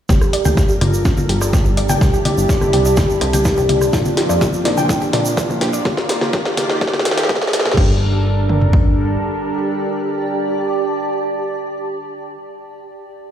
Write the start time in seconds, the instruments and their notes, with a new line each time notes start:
0.09 analog synth bass G1, analog synth pad G3 D4 A4 A#4, ambient pad G4, synth pluck G4, soft synth lead G4, kick, snare, low conga, shaker
0.21 cross-stick, shaker
0.33 ambient pad D5 A5, synth pluck D5, open hi-hat
0.45 analog synth bass D2, synth pluck G5, low conga, shaker
0.57 kick, snare, shaker
0.69 synth pluck G4, shaker
0.81 analog synth bass G1, soft synth lead F4, synth pluck D5, cross-stick, open hi-hat, low conga
0.94 shaker
1.05 kick, snare, shaker
1.17 low conga, shaker
1.29 analog synth bass G1, synth pluck G4, open hi-hat
1.41 synth pluck D5, cross-stick, shaker
1.53 synth pluck G4, kick, snare, low conga, shaker
1.65 analog synth bass G1, shaker
1.77 soft synth lead G4, synth pluck D5, open hi-hat
1.89 synth pluck G5, low conga, shaker
2.01 analog synth bass C2, analog synth pad C3 E4, ambient pad C4, kick, cross-stick, snare, shaker
2.13 synth pluck G4, shaker
2.25 synth pluck D5, open hi-hat, low conga
2.37 analog synth bass G1, shaker
2.49 kick, snare, shaker
2.61 cross-stick, low conga, shaker
2.73 analog synth bass C2, synth pluck G4, open hi-hat
2.85 synth pluck D5, shaker
2.97 synth pluck G4, kick, snare, low conga, shaker
3.10 shaker
3.21 analog synth bass C2, synth pluck D5, cross-stick, open hi-hat
3.33 synth pluck G5, open hi-hat, low conga, shaker
3.45 kick, snare, shaker
3.57 analog synth bass C2, synth pluck G4, shaker
3.69 synth pluck D5, open hi-hat, low conga
3.81 cross-stick, shaker
3.93 analog synth bass A#1, analog synth pad F3 A#3, soft synth lead F4, ambient pad A#4, kick, snare, shaker
4.05 ambient pad C6, low conga, shaker
4.12 ambient pad F5
4.17 synth pluck G4, snare, open hi-hat
4.29 analog synth bass F2, synth pluck D5, shaker
4.41 synth pluck G4, kick, snare, low conga, shaker
4.53 shaker
4.65 analog synth bass A#1, soft synth lead D4, synth pluck D5, snare, open hi-hat
4.77 synth pluck G5, low conga, shaker
4.89 kick, snare, shaker
5.01 synth pluck G4, shaker
5.13 analog synth bass A#1, synth pluck D5, snare, open hi-hat, low conga
5.25 shaker
5.37 kick, snare, shaker
5.49 analog synth bass A#1, low conga, shaker
5.61 soft synth lead D4, synth pluck G4, snare, open hi-hat
5.73 synth pluck D5, shaker
5.85 analog synth pad D#3 F4 G4, kick, snare, low conga
5.97 snare
6.09 snare, open hi-hat
6.21 snare, low conga
6.33 kick, snare
6.45 snare
6.57 snare, open hi-hat, low conga
6.70 snare
6.81 kick, snare
6.87 snare
6.93 snare, low conga
6.99 snare
7.05 snare, open hi-hat
7.11 snare
7.17 snare, open hi-hat
7.23 snare
7.29 kick, snare, low conga
7.35 snare
7.41 snare
7.47 snare
7.53 snare, open hi-hat
7.59 snare
7.66 snare, low conga
7.71 snare
7.77 analog synth bass G1, analog synth pad G3 D4 A4 A#4, soft synth lead D4, synth pluck G4, ambient pad G4, kick, crash
7.85 ambient pad D5
7.92 ambient pad A5
8.49 mid tom
8.61 floor tom
8.73 kick